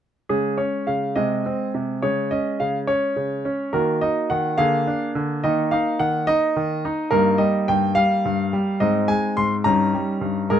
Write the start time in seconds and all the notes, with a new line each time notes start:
0.29 C#3 G#3 G#4
0.58 C#4 C#5
0.87 C#3 F5
1.16 C3 G#3 G#4 D#5
1.46 C4
1.74 C3
2.02 C#3 G#3 G#4 C#5
2.31 C#4 D#5
2.60 C#3 F5
2.87 C#4 C#5
3.16 C#3
3.45 C#4
3.73 D#3 A#3 F#4 A#4
4.01 D#4 D#5
4.30 D#3 F#5
4.58 D3 A#3 G#4 F5
4.87 D4
5.15 D3
5.44 D#3 A#3 D#4 D#5
5.71 D#4 F5
5.99 D#3 F#5
6.27 D#4 D#5
6.56 D#3
6.85 D#4
7.11 G2 A#3 D#4 A#4
7.38 G3 D#5
7.68 G2 G5
7.95 G3 F5
8.25 G2
8.53 G3
8.80 G#2 C4 D#4 D#5
9.08 G#3 G#5
9.37 G#2 C6
9.64 G2 C#4 D#4 A#5
9.94 G3
10.21 G2
10.50 G#2 D#4 G#4 A#4